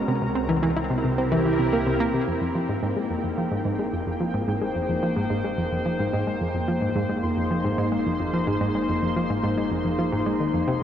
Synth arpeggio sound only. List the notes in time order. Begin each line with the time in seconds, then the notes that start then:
0.08 C3
0.22 C3
0.35 C4
0.49 E3
0.63 E3
0.77 E4
0.90 C3
1.04 C3
1.18 C4
1.32 E3
1.45 E3
1.59 C3
1.73 A#3
1.86 C3
2.00 A#3
2.14 C3
2.28 F2
2.41 F2
2.55 F3
2.69 G#2
2.83 G#2
2.96 G#3
3.10 F2
3.24 F2
3.38 F3
3.51 G#2
3.65 G#2
3.79 G#3
3.93 F2
4.07 F2
4.20 F3
4.34 G#2
4.48 G#2
4.62 G#3
4.76 F2
4.89 F2
5.03 F3
5.17 G#2
5.30 G#2
5.44 G#3
5.58 F2
5.72 F2
5.86 F3
5.99 G#2
6.13 G#2
6.27 G#3
6.41 F2
6.55 F2
6.68 F3
6.82 G#2
6.96 G#2
7.10 G#3
7.23 F2
7.37 F2
7.51 F3
7.65 G#2
7.78 G#2
7.92 G#3
8.06 F2
8.20 F2
8.34 F3
8.47 G#2
8.61 G#2
8.75 G#3
8.89 F2
9.02 F2
9.16 F3
9.30 G#2
9.43 G#2
9.57 G#3
9.71 F2
9.85 F2
9.99 F3
10.12 G#2
10.26 G#3
10.40 D#3
10.53 F2
10.67 C3